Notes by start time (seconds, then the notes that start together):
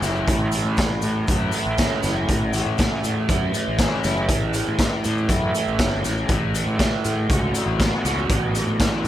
Already playing: A1 E2 A2 E3 A3 C#4
0.02 F#1 E4, snare, closed hi-hat, maracas
0.16 maracas
0.28 A1 A2, kick, closed hi-hat, maracas
0.52 E3, closed hi-hat, maracas
0.65 A2, maracas
0.77 E3, kick, snare, closed hi-hat, maracas
1.02 A2 A3, closed hi-hat, maracas
1.28 F#2 E4, kick, closed hi-hat, maracas
1.52 A3, closed hi-hat, maracas
1.66 A1
1.78 C#4, kick, snare, closed hi-hat, maracas
2.03 F#1 E4, snare, closed hi-hat, maracas
2.16 maracas
2.28 A1 A2, kick, closed hi-hat, maracas
2.53 E3, closed hi-hat, maracas
2.65 A2, maracas
2.78 E3, kick, snare, closed hi-hat, maracas
3.03 A2 A3, closed hi-hat, maracas
3.29 F#2 E4, kick, closed hi-hat, maracas
3.54 A3, closed hi-hat, maracas
3.67 A1
3.79 C#4, kick, snare, closed hi-hat, maracas
4.04 F#1 E4, snare, closed hi-hat, maracas
4.17 maracas
4.29 A1 A2, kick, closed hi-hat, maracas
4.54 E3, closed hi-hat, maracas
4.67 A2, maracas
4.79 E3, kick, snare, closed hi-hat, maracas
5.04 A2 A3, closed hi-hat, maracas
5.17 maracas
5.28 F#2 E4, kick, closed hi-hat, maracas
5.54 A3, closed hi-hat, maracas
5.68 A1, maracas
5.79 G1 C#4, kick, snare, closed hi-hat, maracas
6.04 A1 E4, snare, closed hi-hat, maracas
6.17 maracas
6.29 A1 E2 A2, kick, closed hi-hat, maracas
6.54 E3, closed hi-hat, maracas
6.66 A2, maracas
6.79 E3, kick, snare, closed hi-hat, maracas
7.04 A2 A3, closed hi-hat, maracas
7.30 C#2 F#4, kick, closed hi-hat, maracas
7.54 A3, closed hi-hat, maracas
7.66 A1
7.80 B3, kick, snare, closed hi-hat, maracas
8.05 C#2 F#4, snare, closed hi-hat, maracas
8.18 maracas
8.29 A1 A2, kick, closed hi-hat, maracas
8.55 E3, closed hi-hat, maracas
8.67 A2, maracas
8.80 E3, kick, snare, closed hi-hat, maracas
9.04 A2, closed hi-hat